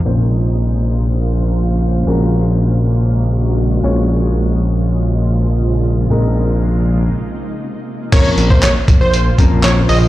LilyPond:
<<
  \new Staff \with { instrumentName = "Digital synth lead" } { \time 4/4 \key bes \minor \tempo 4 = 119 r1 | r1 | r1 | r1 |
des''8 r16 c''16 des''16 r8 c''8. r8 des''16 r16 ees''16 r16 | }
  \new Staff \with { instrumentName = "Grand piano" } { \time 4/4 \key bes \minor <bes des' f' c''>1 | <aes des' ges' bes'>2.~ <aes des' ges' bes'>8 <aes des' f' des''>8~ | <aes des' f' des''>2.~ <aes des' f' des''>8 r8 | <aes c' ees' bes'>2 r2 |
<f bes c' des' bes'>4 r4. <f bes c' des' bes'>4 r8 | }
  \new Staff \with { instrumentName = "Ambient pad" } { \time 4/4 \key bes \minor << { <bes f' c''>1 | <aes ges'>2.~ <aes ges'>8 <f aes f'>8~ | <f aes f'>1 | r1 |
<bes f' c''>1 | } \\ { des1~ | des2.~ des8 des8~ | des1 | r1 |
des1 | } >> }
  \new Staff \with { instrumentName = "Analog synth bass" } { \clef bass \time 4/4 \key bes \minor bes,,1 | bes,,2.~ bes,,8 bes,,8~ | bes,,1 | bes,,2 r2 |
r8 bes,,4 bes,,16 bes,,8. bes,,16 bes,,8. bes,,8 | }
  \new DrumStaff \with { instrumentName = "Drums" } \drummode { \time 4/4 r4 r4 r4 r4 | r4 r4 r4 r4 | r4 r4 r4 r4 | r4 r4 r4 r4 |
<cymc hh bd>8 hh16 bd16 <hc hh sn>8 <hh bd>8 hh8 <hh bd>8 <hc hh sn>8 hho8 | }
>>